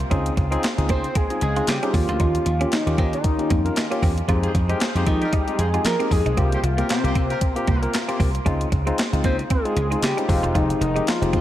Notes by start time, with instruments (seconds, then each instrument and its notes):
0.00 closed hi-hat
0.10 slap bass C#2, harmonium C#3 C4 F4, tine electric piano C4 D#4 F4 G#4, clean electric guitar C#4, kick, closed hi-hat
0.26 closed hi-hat
0.37 slap bass C#2, muted clean electric guitar stroke, kick, closed hi-hat
0.51 tine electric piano C4 D#4 F4 G#4, clean electric guitar C4, closed hi-hat
0.63 snare, clap, closed hi-hat
0.77 slap bass C#2, tine electric piano C4 D#4 F4 G#4, closed hi-hat
0.89 slap bass C#3, clean electric guitar A#3, analog synth lead C5, kick, closed hi-hat
1.04 closed hi-hat
1.15 clean electric guitar C4, analog synth lead G#4, kick, closed hi-hat
1.30 tine electric piano C4 D#4 F4 G#4, closed hi-hat
1.41 slap bass C#2, analog synth lead G#4, muted clean electric guitar stroke, closed hi-hat
1.56 tine electric piano C4 D#4 F4 G#4, clean electric guitar F4, closed hi-hat
1.67 slap bass C#3, analog synth lead G4, snare, clap, closed hi-hat
1.83 tine electric piano C4 D#4 F4 G#4, clean electric guitar C#4, closed hi-hat
1.93 slap bass D#2, harmonium D#3 C#4 G4, tine electric piano A#3 C#4 F4 G4, analog synth lead F4, muted clean electric guitar stroke, kick, open hi-hat
2.09 slap bass D2, clean electric guitar F4, closed hi-hat
2.20 slap bass D#2, clean electric guitar D#4, kick, closed hi-hat
2.35 closed hi-hat
2.46 slap bass D#2, muted clean electric guitar stroke, closed hi-hat
2.60 tine electric piano A#3 C#4 F4 G4, clean electric guitar C#4, closed hi-hat
2.72 analog synth lead D#4, snare, clap, closed hi-hat
2.86 slap bass D#2, tine electric piano A#3 C#4 F4 G4, closed hi-hat
2.98 slap bass D#3, clean electric guitar C4, kick, closed hi-hat
3.13 analog synth lead D#4, closed hi-hat
3.24 kick, closed hi-hat
3.38 tine electric piano A#3 C#4 F4 G4, closed hi-hat
3.50 slap bass F2, clean electric guitar A#3, kick, closed hi-hat
3.65 tine electric piano A#3 C#4 F4 A#4, closed hi-hat
3.76 muted clean electric guitar stroke, snare, clap, closed hi-hat
3.90 tine electric piano A#3 C#4 F4 G4, clean electric guitar C#4, closed hi-hat
4.03 slap bass E2, clean electric guitar C4, kick, open hi-hat
4.18 closed hi-hat
4.28 slap bass F2, harmonium F3 D#4 G#4, tine electric piano G#3 C4 D#4 G4, clean electric guitar F4, kick, closed hi-hat
4.43 horn section F4 G#4 C5, closed hi-hat
4.55 slap bass F2, muted clean electric guitar stroke, kick, closed hi-hat
4.69 tine electric piano G#3 C4 D#4 G4, horn section D#4 G4 A#4, clean electric guitar D#4, closed hi-hat
4.80 horn section F4 G#4 C5, snare, clap, closed hi-hat
4.95 slap bass F2, tine electric piano G#3 C4 D#4 G4, horn section F4 G#4 C5, closed hi-hat
5.07 slap bass F3, clean electric guitar C4, analog synth lead D#4, kick, closed hi-hat
5.22 horn section D#4 G4 A#4, closed hi-hat
5.33 clean electric guitar D#4, analog synth lead G4, kick, closed hi-hat
5.47 tine electric piano G#3 C4 D#4 G4, horn section D#4 F4 G#4, closed hi-hat
5.59 slap bass F2, horn section F4 G#4 C5, analog synth lead G#4, muted clean electric guitar stroke, closed hi-hat
5.73 tine electric piano G#3 C4 D#4 G4, clean electric guitar F4, closed hi-hat
5.85 slap bass F3, analog synth lead A#4, snare, clap, closed hi-hat
5.99 tine electric piano G#3 C4 D#4 G4, clean electric guitar C4, closed hi-hat
6.11 slap bass F2, analog synth lead G#4, muted clean electric guitar stroke, kick, open hi-hat
6.26 slap bass B1, clean electric guitar D#4, closed hi-hat
6.37 slap bass C2, harmonium C3 A#3 F4, tine electric piano A#3 C4 F4 G4, clean electric guitar C4, analog synth lead G4, kick, closed hi-hat
6.52 horn section F4 G4 C5, closed hi-hat
6.63 slap bass C2, analog synth lead F4, muted clean electric guitar stroke, closed hi-hat
6.78 tine electric piano A#3 C4 F4 G4, clean electric guitar A#3, horn section F4 G4 A#4, closed hi-hat
6.89 analog synth lead C4, horn section F4 G4 C5, snare, clap, closed hi-hat
7.04 slap bass C2, tine electric piano A#3 C4 F4 G4, horn section F4 G4 C5, closed hi-hat
7.15 slap bass C3, clean electric guitar C4, kick, closed hi-hat
7.30 horn section F4 G4 A#4, closed hi-hat
7.41 kick, closed hi-hat
7.56 tine electric piano A#3 C4 F4 G4, horn section F4 G4 A#4, closed hi-hat
7.61 analog synth lead A#3
7.67 slap bass C2, clean electric guitar A#3, horn section F4 G4 C5, kick, closed hi-hat
7.82 tine electric piano A#3 C4 F4 A#4, closed hi-hat
7.94 muted clean electric guitar stroke, snare, clap, closed hi-hat
8.08 tine electric piano A#3 C4 F4 G4, clean electric guitar C4, closed hi-hat
8.20 slap bass C2, clean electric guitar A#3, kick, open hi-hat
8.35 closed hi-hat
8.45 slap bass C#2, harmonium C#3 C4, tine electric piano G#3 C4 D#4 F4, clean electric guitar C#4, kick, closed hi-hat
8.61 closed hi-hat
8.72 slap bass C#2, muted clean electric guitar stroke, kick, closed hi-hat
8.86 tine electric piano G#3 C4 D#4 F4, clean electric guitar C4, closed hi-hat
8.98 snare, clap, closed hi-hat
9.12 slap bass C#2, tine electric piano G#3 C4 D#4 F4, closed hi-hat
9.24 slap bass C#3, clean electric guitar A#3, analog synth lead C5, kick, closed hi-hat
9.39 closed hi-hat
9.50 clean electric guitar C4, analog synth lead G#4, kick, closed hi-hat
9.65 tine electric piano G#3 C4 D#4 F4, closed hi-hat
9.76 slap bass C#2, muted clean electric guitar stroke, closed hi-hat
9.91 tine electric piano G#3 C4 D#4 F4, clean electric guitar D#4, closed hi-hat
10.03 slap bass C#3, analog synth lead G4, snare, clap, closed hi-hat
10.17 tine electric piano G#3 C4 D#4 F4, clean electric guitar C#4, closed hi-hat
10.29 slap bass F1, harmonium F3 G#3 D#4, tine electric piano G#3 C4 D#4 G4, analog synth lead F4, muted clean electric guitar stroke, kick, open hi-hat
10.43 slap bass E1, clean electric guitar F4, closed hi-hat
10.55 slap bass F1, analog synth lead D#4, clean electric guitar F4, kick, closed hi-hat
10.70 closed hi-hat
10.81 slap bass F1, analog synth lead D#4, muted clean electric guitar stroke, closed hi-hat
10.95 tine electric piano G#3 C4 D#4 G4, clean electric guitar D#4, closed hi-hat
11.07 analog synth lead F4, snare, clap, closed hi-hat
11.21 slap bass F1, tine electric piano G#3 C4 D#4 G4, closed hi-hat
11.33 slap bass F2, clean electric guitar C4, kick, closed hi-hat